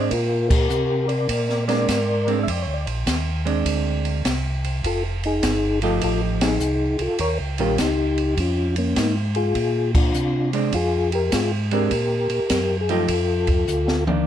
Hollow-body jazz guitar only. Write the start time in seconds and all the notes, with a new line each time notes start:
1.68 G#3 C4 D4
2.27 G#3 C4 D4
3.45 G#3 C4 D4
5.82 F3 A3 D#4 G4
7.59 D#3 G3 C#4 F4
10.53 G#3 C4 D4
11.72 G#3 C4 D4
12.89 F3 A3 D#4 G4
14.07 D#3 A#3 D4